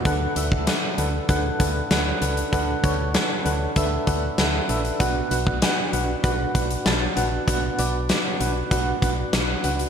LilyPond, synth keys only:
\new Staff \with { instrumentName = "Synth keys" } { \time 4/4 \key b \minor \tempo 4 = 97 << { <d' a' b' fis''>8 <d' a' b' e''>8 <d' a' b' fis''>8 <d' a' b' fis''>8 <d' a' b' fis''>8 <d' a' b' fis''>8 <d' a' b' fis''>8 <d' a' b' fis''>8 | <d' a' b' fis''>8 <d' a' b' cis''>8 <d' a' b' fis''>8 <d' a' b' fis''>8 <d' a' b' e''>8 <d' a' b' fis''>8 <d' a' b' fis''>8 <d' a' b' e''>8 | <d' fis' b' fis''>8 <d' fis' b' fis''>8 <d' fis' b' fis''>8 <d' fis' b' fis''>8 <d' fis' b' fis''>8 <d' fis' b' fis''>8 <d' fis' b' a''>8 <d' fis' b' fis''>8 | <d' fis' b' fis''>8 <d' fis' b' d''>8 <d' fis' b' fis''>8 <d' fis' b' fis''>8 <d' fis' b' fis''>8 <d' fis' b' fis''>8 <d' fis' b' fis''>8 <d' fis' b' fis''>8 | } \\ { d4. r2 r8 | d4. r2 r8 | b,4. r2 r8 | b,4. r2 r8 | } >> }